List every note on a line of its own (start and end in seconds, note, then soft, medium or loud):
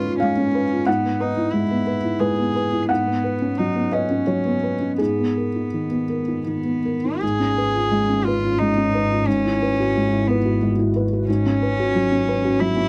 0.00 0.83 G#2 soft
0.00 0.22 G#3 soft
0.00 0.38 C#4 soft
0.00 0.06 F4 soft
0.00 0.19 F4 medium
0.00 0.55 B4 soft
0.00 0.17 C#5 medium
0.06 0.31 F4 soft
0.20 0.48 G#3 soft
0.20 0.88 C#4 medium
0.20 0.82 F5 medium
0.38 0.64 C#4 soft
0.55 0.81 B4 soft
0.72 0.87 F4 soft
0.86 2.86 G#2 soft
0.86 1.22 B3 soft
0.86 2.15 F#5 medium
1.05 1.31 B3 soft
1.20 1.54 D#4 soft
1.20 1.47 B4 soft
1.37 1.63 E4 soft
1.52 1.80 G#3 soft
1.52 2.21 E4 soft
1.71 1.97 B3 soft
1.87 2.13 B4 soft
2.04 2.30 E4 soft
2.20 2.48 G#3 soft
2.20 2.90 G#4 soft
2.20 2.54 B4 medium
2.38 2.66 B3 soft
2.56 2.83 B4 soft
2.73 2.90 E4 soft
2.89 4.96 G#2 soft
2.89 3.59 B3 soft
2.89 3.87 F#5 medium
3.07 3.34 B3 soft
3.24 3.51 B4 soft
3.42 3.68 C#4 soft
3.57 3.86 F#3 soft
3.57 3.95 D#4 soft
3.76 4.03 B3 soft
3.92 5.00 C#4 soft
3.92 4.20 B4 soft
3.92 4.24 D#5 soft
4.11 4.38 C#4 soft
4.27 4.56 F#3 soft
4.27 4.95 C#5 soft
4.45 4.74 B3 soft
4.63 4.92 B4 soft
4.81 4.99 C#4 soft
4.98 7.18 G#2 soft
4.98 6.44 B3 soft
4.98 6.42 G#4 soft
5.18 5.48 B3 soft
5.37 5.66 A#4 soft
5.56 5.85 D#4 soft
5.73 6.03 D#3 soft
5.91 6.20 B3 soft
6.10 6.39 A#4 soft
6.28 6.58 D#4 soft
6.46 6.77 D#3 soft
6.46 7.21 B3 soft
6.65 6.96 B3 soft
6.85 7.15 A#4 soft
7.05 7.22 D#4 soft
7.19 12.89 G#1 soft
7.19 9.23 G#2 soft
7.19 9.22 C#4 soft
7.19 9.23 F4 medium
7.19 8.26 G#4 medium
7.24 12.89 B4 soft
7.40 7.67 C#4 soft
7.58 7.84 B4 soft
7.75 8.02 F4 soft
7.91 8.18 G#3 soft
8.09 8.36 C#4 soft
8.25 8.60 F4 medium
8.25 8.53 B4 soft
8.45 8.70 F4 soft
8.58 8.87 G#3 soft
8.58 9.29 D#4 medium
8.78 9.04 C#4 soft
8.94 9.20 B4 soft
9.12 9.27 F4 soft
9.26 11.24 G#2 soft
9.26 10.29 C#4 medium
9.26 11.27 E4 medium
9.26 12.89 F#4 soft
9.46 9.71 E4 soft
9.62 9.88 B4 soft
9.80 10.05 F#4 soft
9.97 10.22 G#3 soft
10.13 10.38 E4 soft
10.27 10.61 B3 medium
10.27 10.55 B4 soft
10.46 10.72 F#4 soft
10.62 10.88 G#3 soft
10.79 11.05 E4 soft
10.96 11.22 B4 soft
11.13 11.29 F#4 soft
11.28 12.89 G#2 soft
11.28 12.89 C#4 medium
11.28 12.62 C#4 medium
11.46 11.72 C#4 soft
11.62 11.88 B4 soft
11.80 12.05 F#4 soft
11.95 12.21 F#3 soft
12.12 12.37 C#4 soft
12.29 12.54 B4 soft
12.45 12.70 F#4 soft
12.60 12.87 F#3 soft
12.60 12.89 E4 medium
12.76 12.89 C#4 soft